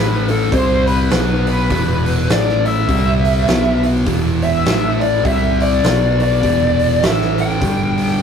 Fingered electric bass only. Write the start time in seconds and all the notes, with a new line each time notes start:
Already playing: A1
0.52 C2
1.12 B1
1.71 E1
2.30 A1
2.89 C2
3.47 B1
4.06 E1
4.66 A1
5.25 C2
5.84 B1
6.44 E1
7.03 A1
7.62 G1